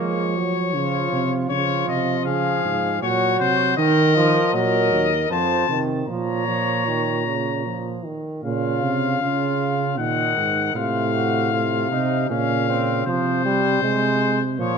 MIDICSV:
0, 0, Header, 1, 5, 480
1, 0, Start_track
1, 0, Key_signature, -5, "major"
1, 0, Tempo, 758534
1, 952, Time_signature, 3, 2, 24, 8
1, 2392, Key_signature, -5, "minor"
1, 3355, Tempo, 782269
1, 5755, Tempo, 767263
1, 9237, End_track
2, 0, Start_track
2, 0, Title_t, "Trumpet"
2, 0, Program_c, 0, 56
2, 0, Note_on_c, 0, 73, 69
2, 838, Note_off_c, 0, 73, 0
2, 946, Note_on_c, 0, 73, 83
2, 1184, Note_off_c, 0, 73, 0
2, 1189, Note_on_c, 0, 75, 73
2, 1424, Note_off_c, 0, 75, 0
2, 1428, Note_on_c, 0, 77, 79
2, 1902, Note_off_c, 0, 77, 0
2, 1912, Note_on_c, 0, 73, 79
2, 2145, Note_off_c, 0, 73, 0
2, 2149, Note_on_c, 0, 72, 88
2, 2385, Note_off_c, 0, 72, 0
2, 2389, Note_on_c, 0, 75, 91
2, 2859, Note_off_c, 0, 75, 0
2, 2873, Note_on_c, 0, 75, 82
2, 3348, Note_off_c, 0, 75, 0
2, 3359, Note_on_c, 0, 81, 85
2, 3661, Note_off_c, 0, 81, 0
2, 3832, Note_on_c, 0, 82, 75
2, 5014, Note_off_c, 0, 82, 0
2, 5279, Note_on_c, 0, 77, 73
2, 6212, Note_off_c, 0, 77, 0
2, 6233, Note_on_c, 0, 78, 74
2, 6708, Note_off_c, 0, 78, 0
2, 6723, Note_on_c, 0, 77, 75
2, 7668, Note_off_c, 0, 77, 0
2, 7687, Note_on_c, 0, 77, 81
2, 8156, Note_off_c, 0, 77, 0
2, 8167, Note_on_c, 0, 72, 80
2, 9012, Note_off_c, 0, 72, 0
2, 9119, Note_on_c, 0, 73, 75
2, 9237, Note_off_c, 0, 73, 0
2, 9237, End_track
3, 0, Start_track
3, 0, Title_t, "Flugelhorn"
3, 0, Program_c, 1, 56
3, 0, Note_on_c, 1, 58, 67
3, 366, Note_off_c, 1, 58, 0
3, 474, Note_on_c, 1, 65, 62
3, 941, Note_off_c, 1, 65, 0
3, 950, Note_on_c, 1, 65, 66
3, 1422, Note_off_c, 1, 65, 0
3, 1431, Note_on_c, 1, 68, 72
3, 1903, Note_off_c, 1, 68, 0
3, 1915, Note_on_c, 1, 66, 71
3, 2383, Note_off_c, 1, 66, 0
3, 2386, Note_on_c, 1, 70, 89
3, 2858, Note_off_c, 1, 70, 0
3, 2871, Note_on_c, 1, 70, 85
3, 3359, Note_on_c, 1, 72, 75
3, 3368, Note_off_c, 1, 70, 0
3, 3667, Note_off_c, 1, 72, 0
3, 3832, Note_on_c, 1, 73, 76
3, 5014, Note_off_c, 1, 73, 0
3, 5282, Note_on_c, 1, 65, 63
3, 5734, Note_off_c, 1, 65, 0
3, 5757, Note_on_c, 1, 65, 63
3, 6229, Note_off_c, 1, 65, 0
3, 6239, Note_on_c, 1, 63, 64
3, 6723, Note_on_c, 1, 65, 63
3, 6733, Note_off_c, 1, 63, 0
3, 6958, Note_off_c, 1, 65, 0
3, 6962, Note_on_c, 1, 66, 62
3, 7198, Note_off_c, 1, 66, 0
3, 7204, Note_on_c, 1, 65, 62
3, 7438, Note_off_c, 1, 65, 0
3, 7441, Note_on_c, 1, 63, 76
3, 7679, Note_off_c, 1, 63, 0
3, 7682, Note_on_c, 1, 61, 61
3, 7919, Note_off_c, 1, 61, 0
3, 7928, Note_on_c, 1, 60, 82
3, 8161, Note_off_c, 1, 60, 0
3, 9237, End_track
4, 0, Start_track
4, 0, Title_t, "Trombone"
4, 0, Program_c, 2, 57
4, 0, Note_on_c, 2, 56, 64
4, 236, Note_on_c, 2, 54, 60
4, 245, Note_off_c, 2, 56, 0
4, 475, Note_off_c, 2, 54, 0
4, 480, Note_on_c, 2, 53, 62
4, 945, Note_off_c, 2, 53, 0
4, 955, Note_on_c, 2, 53, 71
4, 1896, Note_off_c, 2, 53, 0
4, 1919, Note_on_c, 2, 54, 72
4, 2385, Note_off_c, 2, 54, 0
4, 2394, Note_on_c, 2, 51, 92
4, 2627, Note_off_c, 2, 51, 0
4, 2634, Note_on_c, 2, 53, 94
4, 2870, Note_on_c, 2, 54, 90
4, 2880, Note_off_c, 2, 53, 0
4, 3254, Note_off_c, 2, 54, 0
4, 3362, Note_on_c, 2, 53, 79
4, 3592, Note_off_c, 2, 53, 0
4, 3598, Note_on_c, 2, 51, 83
4, 3830, Note_off_c, 2, 51, 0
4, 3836, Note_on_c, 2, 53, 71
4, 4069, Note_off_c, 2, 53, 0
4, 4075, Note_on_c, 2, 53, 66
4, 4309, Note_off_c, 2, 53, 0
4, 4319, Note_on_c, 2, 51, 67
4, 4553, Note_off_c, 2, 51, 0
4, 4557, Note_on_c, 2, 49, 57
4, 4793, Note_off_c, 2, 49, 0
4, 4802, Note_on_c, 2, 53, 54
4, 5041, Note_on_c, 2, 51, 63
4, 5050, Note_off_c, 2, 53, 0
4, 5276, Note_off_c, 2, 51, 0
4, 5280, Note_on_c, 2, 49, 70
4, 5732, Note_off_c, 2, 49, 0
4, 5760, Note_on_c, 2, 49, 68
4, 6230, Note_off_c, 2, 49, 0
4, 6239, Note_on_c, 2, 51, 67
4, 6711, Note_off_c, 2, 51, 0
4, 6720, Note_on_c, 2, 48, 73
4, 7193, Note_off_c, 2, 48, 0
4, 7205, Note_on_c, 2, 48, 69
4, 7677, Note_off_c, 2, 48, 0
4, 7685, Note_on_c, 2, 49, 69
4, 8155, Note_off_c, 2, 49, 0
4, 8161, Note_on_c, 2, 53, 91
4, 8394, Note_off_c, 2, 53, 0
4, 8405, Note_on_c, 2, 55, 92
4, 8635, Note_off_c, 2, 55, 0
4, 8647, Note_on_c, 2, 56, 91
4, 9013, Note_off_c, 2, 56, 0
4, 9119, Note_on_c, 2, 53, 89
4, 9237, Note_off_c, 2, 53, 0
4, 9237, End_track
5, 0, Start_track
5, 0, Title_t, "Tuba"
5, 0, Program_c, 3, 58
5, 0, Note_on_c, 3, 53, 71
5, 475, Note_on_c, 3, 49, 75
5, 484, Note_off_c, 3, 53, 0
5, 708, Note_off_c, 3, 49, 0
5, 712, Note_on_c, 3, 48, 73
5, 946, Note_off_c, 3, 48, 0
5, 949, Note_on_c, 3, 49, 74
5, 1186, Note_off_c, 3, 49, 0
5, 1190, Note_on_c, 3, 48, 69
5, 1431, Note_on_c, 3, 49, 70
5, 1440, Note_off_c, 3, 48, 0
5, 1670, Note_off_c, 3, 49, 0
5, 1674, Note_on_c, 3, 44, 63
5, 1909, Note_off_c, 3, 44, 0
5, 1914, Note_on_c, 3, 46, 71
5, 2149, Note_off_c, 3, 46, 0
5, 2152, Note_on_c, 3, 48, 70
5, 2387, Note_off_c, 3, 48, 0
5, 2392, Note_on_c, 3, 51, 91
5, 2762, Note_off_c, 3, 51, 0
5, 2869, Note_on_c, 3, 46, 78
5, 3111, Note_on_c, 3, 39, 82
5, 3120, Note_off_c, 3, 46, 0
5, 3350, Note_off_c, 3, 39, 0
5, 3354, Note_on_c, 3, 41, 78
5, 3587, Note_off_c, 3, 41, 0
5, 3590, Note_on_c, 3, 48, 69
5, 3826, Note_off_c, 3, 48, 0
5, 3829, Note_on_c, 3, 46, 76
5, 5013, Note_off_c, 3, 46, 0
5, 5278, Note_on_c, 3, 46, 79
5, 5517, Note_on_c, 3, 48, 75
5, 5526, Note_off_c, 3, 46, 0
5, 5747, Note_off_c, 3, 48, 0
5, 5751, Note_on_c, 3, 49, 74
5, 6233, Note_on_c, 3, 46, 80
5, 6242, Note_off_c, 3, 49, 0
5, 6473, Note_off_c, 3, 46, 0
5, 6477, Note_on_c, 3, 44, 68
5, 6709, Note_off_c, 3, 44, 0
5, 6713, Note_on_c, 3, 45, 89
5, 7426, Note_off_c, 3, 45, 0
5, 7444, Note_on_c, 3, 48, 90
5, 7680, Note_off_c, 3, 48, 0
5, 7686, Note_on_c, 3, 46, 88
5, 8155, Note_off_c, 3, 46, 0
5, 8164, Note_on_c, 3, 48, 83
5, 8628, Note_off_c, 3, 48, 0
5, 8638, Note_on_c, 3, 48, 85
5, 9115, Note_on_c, 3, 46, 74
5, 9125, Note_off_c, 3, 48, 0
5, 9237, Note_off_c, 3, 46, 0
5, 9237, End_track
0, 0, End_of_file